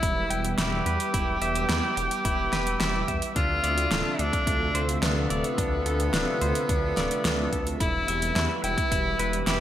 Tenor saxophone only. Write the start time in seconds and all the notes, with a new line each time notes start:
Already playing: E4
0.58 G4
3.36 F4
4.20 D4
5.03 B3
7.80 E4
8.64 E4
9.47 G4